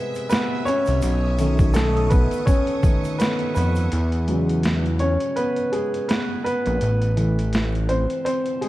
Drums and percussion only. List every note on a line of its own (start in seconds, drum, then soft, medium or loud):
0.15 closed hi-hat soft
0.15 shaker soft
0.30 snare loud
0.30 closed hi-hat medium
0.30 shaker medium
0.66 closed hi-hat medium
0.66 shaker medium
0.86 closed hi-hat soft
0.86 shaker soft
1.02 closed hi-hat medium
1.02 shaker medium
1.38 closed hi-hat medium
1.38 shaker soft
1.59 kick medium
1.59 closed hi-hat soft
1.59 shaker soft
1.74 snare loud
1.74 closed hi-hat medium
1.74 shaker medium
1.97 closed hi-hat soft
2.11 kick medium
2.11 closed hi-hat medium
2.11 shaker soft
2.31 closed hi-hat soft
2.31 shaker medium
2.47 kick medium
2.47 closed hi-hat medium
2.47 shaker medium
2.67 closed hi-hat soft
2.83 kick loud
2.83 closed hi-hat medium
2.83 shaker soft
3.04 closed hi-hat soft
3.04 shaker soft
3.20 snare loud
3.20 closed hi-hat medium
3.20 shaker medium
3.39 closed hi-hat soft
3.56 closed hi-hat medium
3.56 shaker medium
3.75 closed hi-hat soft
3.75 shaker soft
3.92 closed hi-hat medium
4.12 closed hi-hat soft
4.28 closed hi-hat medium
4.49 closed hi-hat soft
4.63 snare loud
4.63 closed hi-hat medium
4.86 closed hi-hat soft
4.99 closed hi-hat medium
5.20 closed hi-hat soft
5.37 closed hi-hat medium
5.56 closed hi-hat soft
5.73 closed hi-hat medium
5.94 closed hi-hat soft
6.09 snare loud
6.09 closed hi-hat medium
6.46 closed hi-hat medium
6.66 closed hi-hat soft
6.81 closed hi-hat medium
7.02 closed hi-hat soft
7.17 closed hi-hat medium
7.39 closed hi-hat soft
7.53 snare loud
7.53 closed hi-hat medium
7.75 closed hi-hat soft
7.89 closed hi-hat medium
8.10 closed hi-hat soft
8.26 closed hi-hat medium
8.46 closed hi-hat soft
8.62 closed hi-hat medium